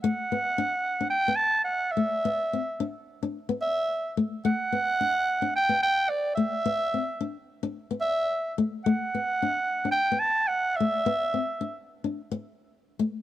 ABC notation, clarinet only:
X:1
M:4/4
L:1/8
Q:1/4=109
K:Dmix
V:1 name="Clarinet"
f4 g a f e- | e3 z2 e2 z | f4 g g d e- | e3 z2 e2 z |
f4 g a f e- | e3 z4 z |]